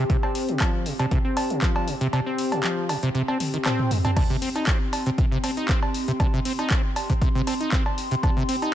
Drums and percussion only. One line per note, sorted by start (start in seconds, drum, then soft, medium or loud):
0.10 kick loud
0.10 closed hi-hat medium
0.23 cowbell medium
0.35 open hi-hat loud
0.49 closed hi-hat medium
0.60 kick loud
0.60 clap loud
0.60 closed hi-hat medium
0.60 cowbell medium
0.86 open hi-hat medium
0.99 closed hi-hat medium
0.99 cowbell medium
1.11 kick loud
1.11 closed hi-hat medium
1.37 open hi-hat loud
1.37 cowbell medium
1.50 closed hi-hat medium
1.62 kick loud
1.62 clap loud
1.62 closed hi-hat medium
1.76 cowbell medium
1.88 open hi-hat loud
2.01 closed hi-hat medium
2.13 closed hi-hat medium
2.13 cowbell medium
2.38 open hi-hat loud
2.52 closed hi-hat medium
2.52 cowbell medium
2.64 clap loud
2.64 closed hi-hat medium
2.89 open hi-hat medium
2.89 cowbell medium
3.03 closed hi-hat medium
3.15 closed hi-hat medium
3.28 cowbell medium
3.40 open hi-hat loud
3.40 high tom medium
3.54 closed hi-hat medium
3.65 clap loud
3.65 closed hi-hat medium
3.65 mid tom medium
3.65 cowbell medium
3.79 mid tom medium
3.91 mid tom medium
3.91 open hi-hat loud
4.05 closed hi-hat medium
4.05 mid tom medium
4.05 cowbell medium
4.17 kick loud
4.17 closed hi-hat medium
4.17 cowbell medium
4.17 crash loud
4.42 open hi-hat loud
4.56 closed hi-hat medium
4.56 cowbell soft
4.67 kick loud
4.67 clap loud
4.67 closed hi-hat medium
4.93 open hi-hat loud
4.93 cowbell medium
5.06 closed hi-hat medium
5.18 kick loud
5.18 closed hi-hat medium
5.44 open hi-hat loud
5.44 cowbell soft
5.57 closed hi-hat medium
5.69 kick loud
5.69 clap loud
5.69 closed hi-hat medium
5.83 cowbell medium
5.94 open hi-hat loud
6.08 closed hi-hat medium
6.20 kick loud
6.20 closed hi-hat medium
6.20 cowbell medium
6.45 open hi-hat loud
6.59 closed hi-hat medium
6.59 cowbell soft
6.70 kick loud
6.70 clap loud
6.70 closed hi-hat medium
6.96 open hi-hat loud
6.96 cowbell medium
7.10 kick medium
7.10 closed hi-hat medium
7.22 kick loud
7.22 closed hi-hat medium
7.47 open hi-hat loud
7.47 cowbell soft
7.61 closed hi-hat medium
7.72 kick loud
7.72 clap loud
7.72 closed hi-hat medium
7.86 cowbell medium
7.98 open hi-hat loud
8.11 closed hi-hat medium
8.23 kick loud
8.23 closed hi-hat soft
8.23 cowbell medium
8.49 open hi-hat loud
8.62 closed hi-hat medium
8.62 cowbell soft